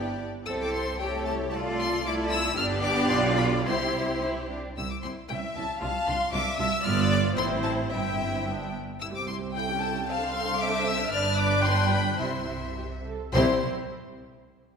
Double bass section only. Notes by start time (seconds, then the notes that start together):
Already playing: G1
0.47 C2
2.57 G1
3.10 B1
3.64 C2
4.77 C2
5.04 C2
5.30 C2
5.55 C2
5.81 C2
6.07 C2
6.32 C2
6.58 C2
6.84 G1
7.38 A1
7.91 G1
9.00 C2
11.10 G1
12.20 C2
13.34 C2